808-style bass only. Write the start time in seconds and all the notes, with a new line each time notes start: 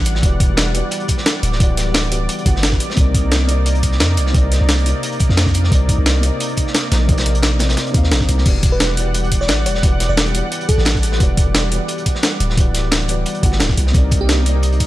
Already playing: A1
0.23 E1
0.50 E1
1.43 D1
2.46 G1
2.97 C2
4.00 F2
4.18 C2
4.34 C2
4.61 C2
5.30 F2
5.72 C2
5.98 C2
6.92 A#1
7.95 D#2
8.12 A#1
8.29 C2
8.46 E1
9.49 A1
9.66 E1
9.83 E1
10.09 E1
10.78 A1
11.20 E1
11.47 E1
12.40 D1
13.43 G1
13.60 D1
13.78 C2
13.95 C2